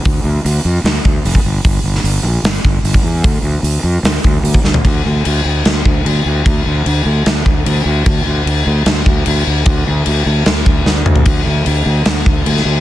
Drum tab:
CC |----------------|----------------|----------------|x---x---x---x---|
HH |o---o---o---o---|o---o---o---o---|o---o---o---o---|----------------|
SD |--------o-------|---o----o-------|--------o-----o-|--------o-------|
T2 |----------------|----------------|----------------|----------------|
FT |----------------|----------------|---------------o|----------------|
BD |o---------o--o--|o---------o--o--|o---------o--o--|o---------o-----|

CC |x---x---x---x---|x---x---x---x---|x---x---x-------|x---x---x---x---|
HH |----------------|----------------|----------------|----------------|
SD |--------o-------|--------o-------|--------o---o---|--------o----o--|
T2 |----------------|----------------|--------------o-|----------------|
FT |----------------|----------------|---------------o|----------------|
BD |o---------o-----|o---------o-----|o---------o-----|o---------o-----|